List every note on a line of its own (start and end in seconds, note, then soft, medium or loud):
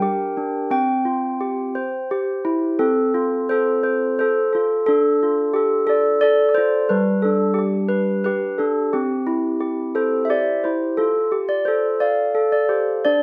0.00 0.36 D4 medium
0.00 0.71 G4 medium
0.00 0.71 A#4 medium
0.00 0.70 G5 loud
0.37 0.72 D4 medium
0.71 1.75 C4 medium
0.71 2.07 G5 loud
1.05 1.75 F4 medium
1.41 1.76 G4 medium
1.75 2.80 C5 medium
2.11 2.81 G4 medium
2.45 2.80 E4 medium
2.79 4.19 C4 medium
2.79 3.50 A4 medium
3.14 4.54 F4 medium
3.49 4.19 A4 medium
3.49 3.82 C5 medium
3.83 4.18 C5 medium
4.19 4.52 A4 medium
4.19 4.55 C5 medium
4.53 4.89 F4 medium
4.53 4.69 A4 medium
4.86 6.23 D4 medium
4.86 5.55 A4 medium
5.23 6.56 F4 medium
5.54 5.90 G4 medium
5.54 5.86 A4 medium
5.87 6.22 A4 medium
5.87 6.20 D5 medium
6.21 6.90 A4 medium
6.21 6.48 D5 loud
6.49 6.56 D5 medium
6.54 6.91 F4 medium
6.54 6.91 C5 medium
6.89 8.25 G3 medium
6.89 7.25 B4 medium
7.22 8.58 D4 medium
7.22 7.38 A4 medium
7.54 7.57 G4 medium
7.59 8.25 G4 medium
7.89 8.23 B4 medium
8.24 8.92 G4 medium
8.24 8.56 B4 medium
8.58 8.93 D4 medium
8.58 8.74 A4 medium
8.93 10.31 C4 medium
8.93 9.59 G4 medium
9.27 10.64 E4 medium
9.60 10.28 G4 medium
9.95 10.24 A4 medium
9.95 10.63 C5 medium
10.25 10.31 E5 medium
10.30 10.99 G4 medium
10.30 10.66 D5 medium
10.64 10.99 E4 medium
10.64 11.00 C5 medium
10.97 12.36 F4 medium
10.97 11.34 A4 medium
11.32 11.50 G4 medium
11.49 11.57 D5 medium
11.65 12.33 A4 medium
11.65 12.02 C5 medium
12.00 12.51 D5 medium
12.00 13.05 F5 medium
12.35 13.04 A4 medium
12.52 12.69 D5 medium
12.69 13.04 G4 medium
12.69 13.05 C5 medium
13.05 13.23 D4 medium
13.05 13.23 D5 loud